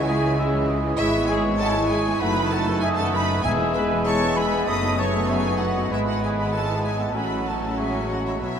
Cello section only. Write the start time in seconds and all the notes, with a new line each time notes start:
Already playing: C#3
0.99 G#2
2.21 F#2
3.45 E2
4.67 F#2
5.90 G#2
7.15 A2
8.41 B2